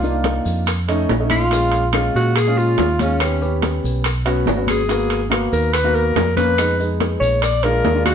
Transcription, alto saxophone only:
0, 0, Header, 1, 2, 480
1, 0, Start_track
1, 0, Key_signature, -6, "minor"
1, 0, Tempo, 423131
1, 1715, Time_signature, 4, 2, 24, 8
1, 9241, End_track
2, 0, Start_track
2, 0, Title_t, "Alto saxophone"
2, 0, Program_c, 0, 65
2, 0, Note_on_c, 0, 65, 72
2, 283, Note_off_c, 0, 65, 0
2, 1482, Note_on_c, 0, 65, 81
2, 2153, Note_off_c, 0, 65, 0
2, 2450, Note_on_c, 0, 66, 94
2, 2679, Note_on_c, 0, 68, 97
2, 2696, Note_off_c, 0, 66, 0
2, 2923, Note_on_c, 0, 65, 93
2, 2940, Note_off_c, 0, 68, 0
2, 3411, Note_on_c, 0, 61, 77
2, 3428, Note_off_c, 0, 65, 0
2, 4123, Note_off_c, 0, 61, 0
2, 5331, Note_on_c, 0, 68, 77
2, 5997, Note_off_c, 0, 68, 0
2, 6270, Note_on_c, 0, 70, 85
2, 6504, Note_on_c, 0, 71, 87
2, 6521, Note_off_c, 0, 70, 0
2, 6750, Note_on_c, 0, 70, 89
2, 6767, Note_off_c, 0, 71, 0
2, 7216, Note_off_c, 0, 70, 0
2, 7223, Note_on_c, 0, 71, 87
2, 7902, Note_off_c, 0, 71, 0
2, 8169, Note_on_c, 0, 73, 92
2, 8420, Note_on_c, 0, 74, 96
2, 8437, Note_off_c, 0, 73, 0
2, 8660, Note_on_c, 0, 70, 99
2, 8677, Note_off_c, 0, 74, 0
2, 9129, Note_off_c, 0, 70, 0
2, 9135, Note_on_c, 0, 66, 84
2, 9241, Note_off_c, 0, 66, 0
2, 9241, End_track
0, 0, End_of_file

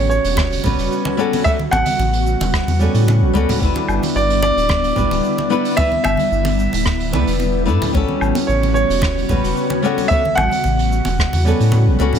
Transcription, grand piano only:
0, 0, Header, 1, 2, 480
1, 0, Start_track
1, 0, Tempo, 540541
1, 1290, Time_signature, 4, 2, 24, 8
1, 10825, End_track
2, 0, Start_track
2, 0, Title_t, "Grand piano"
2, 0, Program_c, 0, 0
2, 83, Note_on_c, 0, 73, 82
2, 1251, Note_off_c, 0, 73, 0
2, 1282, Note_on_c, 0, 76, 108
2, 1337, Note_off_c, 0, 76, 0
2, 1521, Note_on_c, 0, 78, 104
2, 2450, Note_off_c, 0, 78, 0
2, 3692, Note_on_c, 0, 74, 90
2, 3916, Note_off_c, 0, 74, 0
2, 3929, Note_on_c, 0, 74, 110
2, 5121, Note_on_c, 0, 76, 110
2, 5166, Note_off_c, 0, 74, 0
2, 5348, Note_off_c, 0, 76, 0
2, 5361, Note_on_c, 0, 76, 102
2, 6290, Note_off_c, 0, 76, 0
2, 7520, Note_on_c, 0, 73, 82
2, 7748, Note_off_c, 0, 73, 0
2, 7762, Note_on_c, 0, 73, 91
2, 8952, Note_on_c, 0, 76, 108
2, 9002, Note_off_c, 0, 73, 0
2, 9194, Note_on_c, 0, 78, 107
2, 9208, Note_off_c, 0, 76, 0
2, 10127, Note_off_c, 0, 78, 0
2, 10825, End_track
0, 0, End_of_file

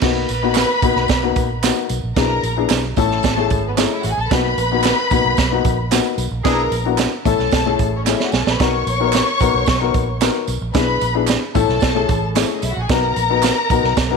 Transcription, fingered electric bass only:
0, 0, Header, 1, 2, 480
1, 0, Start_track
1, 0, Key_signature, 5, "major"
1, 0, Tempo, 536673
1, 19, Time_signature, 4, 2, 24, 8
1, 12673, End_track
2, 0, Start_track
2, 0, Title_t, "Fingered electric bass"
2, 0, Program_c, 0, 33
2, 19, Note_on_c, 0, 35, 99
2, 219, Note_off_c, 0, 35, 0
2, 263, Note_on_c, 0, 34, 96
2, 562, Note_off_c, 0, 34, 0
2, 738, Note_on_c, 0, 34, 80
2, 838, Note_off_c, 0, 34, 0
2, 860, Note_on_c, 0, 35, 89
2, 960, Note_off_c, 0, 35, 0
2, 980, Note_on_c, 0, 35, 84
2, 1180, Note_off_c, 0, 35, 0
2, 1217, Note_on_c, 0, 34, 92
2, 1518, Note_off_c, 0, 34, 0
2, 1699, Note_on_c, 0, 35, 90
2, 1798, Note_off_c, 0, 35, 0
2, 1819, Note_on_c, 0, 34, 77
2, 1918, Note_off_c, 0, 34, 0
2, 1936, Note_on_c, 0, 35, 94
2, 2136, Note_off_c, 0, 35, 0
2, 2173, Note_on_c, 0, 34, 88
2, 2375, Note_off_c, 0, 34, 0
2, 2417, Note_on_c, 0, 35, 80
2, 2617, Note_off_c, 0, 35, 0
2, 2657, Note_on_c, 0, 33, 96
2, 2857, Note_off_c, 0, 33, 0
2, 2898, Note_on_c, 0, 33, 89
2, 3097, Note_off_c, 0, 33, 0
2, 3138, Note_on_c, 0, 32, 88
2, 3437, Note_off_c, 0, 32, 0
2, 3615, Note_on_c, 0, 33, 97
2, 3715, Note_off_c, 0, 33, 0
2, 3735, Note_on_c, 0, 34, 87
2, 3834, Note_off_c, 0, 34, 0
2, 3857, Note_on_c, 0, 35, 104
2, 4056, Note_off_c, 0, 35, 0
2, 4094, Note_on_c, 0, 34, 95
2, 4394, Note_off_c, 0, 34, 0
2, 4572, Note_on_c, 0, 34, 78
2, 4672, Note_off_c, 0, 34, 0
2, 4691, Note_on_c, 0, 35, 83
2, 4792, Note_off_c, 0, 35, 0
2, 4812, Note_on_c, 0, 35, 86
2, 5013, Note_off_c, 0, 35, 0
2, 5054, Note_on_c, 0, 34, 103
2, 5354, Note_off_c, 0, 34, 0
2, 5525, Note_on_c, 0, 35, 91
2, 5627, Note_off_c, 0, 35, 0
2, 5645, Note_on_c, 0, 34, 84
2, 5748, Note_off_c, 0, 34, 0
2, 5771, Note_on_c, 0, 35, 97
2, 5971, Note_off_c, 0, 35, 0
2, 6007, Note_on_c, 0, 34, 92
2, 6309, Note_off_c, 0, 34, 0
2, 6489, Note_on_c, 0, 33, 95
2, 6590, Note_off_c, 0, 33, 0
2, 6612, Note_on_c, 0, 35, 84
2, 6711, Note_off_c, 0, 35, 0
2, 6729, Note_on_c, 0, 35, 85
2, 6930, Note_off_c, 0, 35, 0
2, 6971, Note_on_c, 0, 33, 88
2, 7272, Note_off_c, 0, 33, 0
2, 7451, Note_on_c, 0, 35, 93
2, 7551, Note_off_c, 0, 35, 0
2, 7572, Note_on_c, 0, 34, 83
2, 7671, Note_off_c, 0, 34, 0
2, 7693, Note_on_c, 0, 35, 91
2, 7892, Note_off_c, 0, 35, 0
2, 7929, Note_on_c, 0, 34, 94
2, 8231, Note_off_c, 0, 34, 0
2, 8415, Note_on_c, 0, 34, 78
2, 8513, Note_off_c, 0, 34, 0
2, 8532, Note_on_c, 0, 35, 92
2, 8631, Note_off_c, 0, 35, 0
2, 8656, Note_on_c, 0, 35, 90
2, 8854, Note_off_c, 0, 35, 0
2, 8895, Note_on_c, 0, 34, 92
2, 9194, Note_off_c, 0, 34, 0
2, 9371, Note_on_c, 0, 35, 84
2, 9471, Note_off_c, 0, 35, 0
2, 9494, Note_on_c, 0, 34, 78
2, 9592, Note_off_c, 0, 34, 0
2, 9612, Note_on_c, 0, 35, 97
2, 9812, Note_off_c, 0, 35, 0
2, 9853, Note_on_c, 0, 34, 95
2, 10154, Note_off_c, 0, 34, 0
2, 10334, Note_on_c, 0, 33, 93
2, 10433, Note_off_c, 0, 33, 0
2, 10458, Note_on_c, 0, 35, 95
2, 10555, Note_off_c, 0, 35, 0
2, 10577, Note_on_c, 0, 35, 86
2, 10775, Note_off_c, 0, 35, 0
2, 10816, Note_on_c, 0, 33, 100
2, 11115, Note_off_c, 0, 33, 0
2, 11295, Note_on_c, 0, 35, 93
2, 11394, Note_off_c, 0, 35, 0
2, 11418, Note_on_c, 0, 34, 87
2, 11516, Note_off_c, 0, 34, 0
2, 11536, Note_on_c, 0, 35, 97
2, 11736, Note_off_c, 0, 35, 0
2, 11775, Note_on_c, 0, 34, 95
2, 12076, Note_off_c, 0, 34, 0
2, 12255, Note_on_c, 0, 34, 83
2, 12355, Note_off_c, 0, 34, 0
2, 12374, Note_on_c, 0, 35, 97
2, 12475, Note_off_c, 0, 35, 0
2, 12496, Note_on_c, 0, 35, 89
2, 12673, Note_off_c, 0, 35, 0
2, 12673, End_track
0, 0, End_of_file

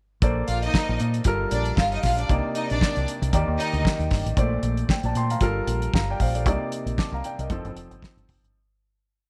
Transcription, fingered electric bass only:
0, 0, Header, 1, 2, 480
1, 0, Start_track
1, 0, Key_signature, -2, "major"
1, 0, Tempo, 519931
1, 207, Time_signature, 4, 2, 24, 8
1, 8583, End_track
2, 0, Start_track
2, 0, Title_t, "Fingered electric bass"
2, 0, Program_c, 0, 33
2, 203, Note_on_c, 0, 34, 96
2, 381, Note_off_c, 0, 34, 0
2, 446, Note_on_c, 0, 34, 87
2, 623, Note_off_c, 0, 34, 0
2, 821, Note_on_c, 0, 34, 90
2, 898, Note_off_c, 0, 34, 0
2, 926, Note_on_c, 0, 46, 96
2, 1102, Note_off_c, 0, 46, 0
2, 1152, Note_on_c, 0, 31, 92
2, 1333, Note_off_c, 0, 31, 0
2, 1400, Note_on_c, 0, 34, 88
2, 1577, Note_off_c, 0, 34, 0
2, 1634, Note_on_c, 0, 31, 93
2, 1813, Note_off_c, 0, 31, 0
2, 1881, Note_on_c, 0, 34, 79
2, 2058, Note_off_c, 0, 34, 0
2, 2117, Note_on_c, 0, 36, 93
2, 2217, Note_off_c, 0, 36, 0
2, 2501, Note_on_c, 0, 34, 69
2, 2575, Note_off_c, 0, 34, 0
2, 2738, Note_on_c, 0, 36, 82
2, 2813, Note_off_c, 0, 36, 0
2, 2970, Note_on_c, 0, 36, 103
2, 3048, Note_off_c, 0, 36, 0
2, 3077, Note_on_c, 0, 39, 96
2, 3176, Note_off_c, 0, 39, 0
2, 3211, Note_on_c, 0, 39, 82
2, 3289, Note_off_c, 0, 39, 0
2, 3445, Note_on_c, 0, 38, 86
2, 3525, Note_off_c, 0, 38, 0
2, 3684, Note_on_c, 0, 39, 85
2, 3765, Note_off_c, 0, 39, 0
2, 3795, Note_on_c, 0, 31, 85
2, 3895, Note_off_c, 0, 31, 0
2, 3921, Note_on_c, 0, 33, 72
2, 4003, Note_off_c, 0, 33, 0
2, 4034, Note_on_c, 0, 34, 98
2, 4213, Note_off_c, 0, 34, 0
2, 4272, Note_on_c, 0, 34, 88
2, 4452, Note_off_c, 0, 34, 0
2, 4648, Note_on_c, 0, 34, 84
2, 4728, Note_off_c, 0, 34, 0
2, 4757, Note_on_c, 0, 46, 99
2, 4935, Note_off_c, 0, 46, 0
2, 4989, Note_on_c, 0, 31, 95
2, 5171, Note_off_c, 0, 31, 0
2, 5235, Note_on_c, 0, 34, 87
2, 5415, Note_off_c, 0, 34, 0
2, 5482, Note_on_c, 0, 31, 91
2, 5660, Note_off_c, 0, 31, 0
2, 5724, Note_on_c, 0, 34, 93
2, 5964, Note_off_c, 0, 34, 0
2, 5964, Note_on_c, 0, 36, 88
2, 6063, Note_off_c, 0, 36, 0
2, 6332, Note_on_c, 0, 34, 81
2, 6413, Note_off_c, 0, 34, 0
2, 6573, Note_on_c, 0, 36, 89
2, 6654, Note_off_c, 0, 36, 0
2, 6819, Note_on_c, 0, 36, 97
2, 6898, Note_off_c, 0, 36, 0
2, 6923, Note_on_c, 0, 29, 101
2, 7024, Note_off_c, 0, 29, 0
2, 7059, Note_on_c, 0, 31, 99
2, 7138, Note_off_c, 0, 31, 0
2, 7158, Note_on_c, 0, 29, 81
2, 7261, Note_off_c, 0, 29, 0
2, 7298, Note_on_c, 0, 31, 81
2, 7378, Note_off_c, 0, 31, 0
2, 7540, Note_on_c, 0, 31, 81
2, 7619, Note_off_c, 0, 31, 0
2, 7649, Note_on_c, 0, 29, 82
2, 7749, Note_off_c, 0, 29, 0
2, 7786, Note_on_c, 0, 31, 76
2, 7863, Note_off_c, 0, 31, 0
2, 8583, End_track
0, 0, End_of_file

